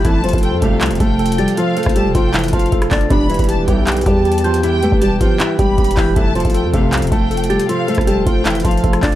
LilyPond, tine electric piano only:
\new Staff \with { instrumentName = "Tine electric piano" } { \time 4/4 \key f \lydian \tempo 4 = 157 a'8 c''8 a'4. a''8 a'8 a'''8 | a'8 c''8 a'4. a''8 a'8 a'''8 | g'8 b'8 g'4. g''8 g'8 g'''8 | g'8 b'8 g'4. g''8 g'8 g'''8 |
a'8 c''8 a'4. a''8 a'8 a'''8 | a'8 c''8 a'4. a''8 a'8 a'''8 | }